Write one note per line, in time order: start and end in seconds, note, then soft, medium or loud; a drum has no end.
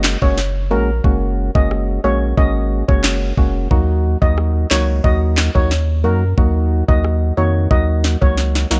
0.00 0.16 F#1 loud
0.00 0.18 G#3 medium
0.00 0.18 A#3 medium
0.00 0.18 C#4 medium
0.00 0.18 F#4 loud
0.04 snare loud
0.04 clap loud
0.22 0.72 F#1 medium
0.22 0.40 G#3 medium
0.22 0.40 A#3 medium
0.22 0.40 C#4 medium
0.22 0.40 F#4 medium
0.22 0.32 C#5 medium
0.22 kick medium
0.38 snare medium
0.71 1.01 A#1 medium
0.71 0.91 G#3 medium
0.71 0.91 A#3 medium
0.71 0.91 C#4 medium
0.71 0.91 F#4 medium
0.71 0.82 A#4 medium
1.04 1.50 F#1 loud
1.04 1.51 G#3 medium
1.04 1.51 A#3 medium
1.04 1.51 C#4 medium
1.04 1.51 F#4 loud
1.04 kick loud
1.55 1.99 F#1 medium
1.55 2.00 G#3 medium
1.55 2.00 A#3 medium
1.55 2.00 C#4 medium
1.55 2.01 F#4 medium
1.55 1.65 D#5 medium
1.55 kick medium
1.71 cross-stick medium
2.04 2.34 A#1 medium
2.04 2.35 G#3 medium
2.04 2.35 A#3 medium
2.04 2.35 C#4 medium
2.04 2.35 F#4 medium
2.04 2.15 C#5 medium
2.37 2.83 G#1 loud
2.37 2.84 G#3 loud
2.37 2.84 A#3 medium
2.37 2.84 C#4 medium
2.37 2.85 F#4 loud
2.37 2.49 D#5 medium
2.37 kick loud
2.88 3.32 F#1 medium
2.88 3.34 G#3 medium
2.88 3.34 A#3 medium
2.88 3.34 C#4 medium
2.88 3.34 F#4 medium
2.88 2.98 C#5 medium
2.88 kick medium
3.04 snare loud
3.04 clap medium
3.37 3.67 F1 medium
3.37 3.68 G#3 medium
3.37 3.68 A#3 medium
3.37 3.69 C#4 medium
3.37 3.69 F#4 medium
3.37 kick medium
3.71 4.16 D#2 loud
3.71 4.17 F#3 medium
3.71 4.18 A#3 medium
3.71 4.18 D#4 medium
3.71 4.18 F#4 loud
3.71 kick medium
4.22 4.65 D#2 loud
4.22 4.67 F#3 medium
4.22 4.67 A#3 medium
4.22 4.67 D#4 medium
4.22 4.67 F#4 medium
4.22 4.32 D#5 medium
4.22 kick medium
4.38 cross-stick medium
4.71 5.01 C#2 loud
4.71 5.02 F#3 medium
4.71 5.02 A#3 medium
4.71 5.02 D#4 medium
4.71 5.02 F#4 medium
4.71 4.82 C#5 medium
4.71 snare loud
4.71 clap medium
5.04 5.50 D#2 loud
5.04 5.51 F#3 medium
5.04 5.51 A#3 medium
5.04 5.51 D#4 medium
5.04 5.51 F#4 loud
5.04 5.15 D#5 medium
5.04 kick loud
5.38 snare loud
5.38 clap medium
5.55 6.06 D#2 medium
5.55 5.73 F#3 medium
5.55 5.73 A#3 medium
5.55 5.73 D#4 medium
5.55 5.73 F#4 medium
5.55 5.65 C#5 medium
5.55 kick medium
5.71 snare medium
6.04 6.34 F#2 medium
6.04 6.24 F#3 medium
6.04 6.24 A#3 medium
6.04 6.24 D#4 medium
6.04 6.24 F#4 medium
6.04 6.15 A#4 medium
6.37 6.83 D#2 loud
6.37 6.84 F#3 medium
6.37 6.84 A#3 medium
6.37 6.84 D#4 medium
6.37 6.84 F#4 loud
6.37 kick medium
6.88 7.32 D#2 medium
6.88 7.34 F#3 medium
6.88 7.34 A#3 medium
6.88 7.34 D#4 medium
6.88 7.34 F#4 medium
6.88 6.98 D#5 medium
6.88 kick medium
7.04 cross-stick medium
7.37 7.67 F2 loud
7.37 7.68 D#3 medium
7.37 7.68 A#3 medium
7.37 7.68 D#4 medium
7.37 7.69 F#4 medium
7.37 7.49 C#5 medium
7.71 8.16 D#2 loud
7.71 8.18 F#3 medium
7.71 8.18 A#3 medium
7.71 8.18 D#4 medium
7.71 8.18 F#4 loud
7.71 7.82 D#5 medium
7.71 kick medium
8.04 snare medium
8.22 8.65 C#2 medium
8.22 8.67 F#3 medium
8.22 8.67 A#3 medium
8.22 8.67 D#4 medium
8.22 8.67 F#4 medium
8.22 8.32 C#5 medium
8.22 kick medium
8.38 snare medium
8.55 snare medium
8.71 8.80 C2 loud
8.71 8.80 F#3 medium
8.71 8.80 A#3 medium
8.71 8.80 D#4 medium
8.71 8.80 F#4 medium
8.71 snare medium